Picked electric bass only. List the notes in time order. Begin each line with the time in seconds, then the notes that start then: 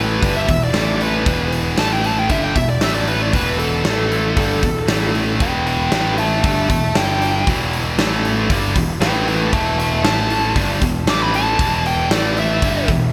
Already playing: A1
0.22 G1
0.49 E1
0.74 A1
1.26 E1
1.78 A1
2.30 G1
2.56 E1
2.82 A1
3.34 E1
3.85 A1
4.37 G1
4.63 E1
4.89 A1
5.40 E1
5.92 A1
6.44 G1
6.70 E1
6.95 G1
7.47 E1
7.98 A1
8.50 G1
8.76 E1
9.01 A1
9.53 E1
10.03 A1
10.56 G1
10.82 E1
11.06 A1
11.59 E1
12.09 A1
12.62 G1
12.88 E1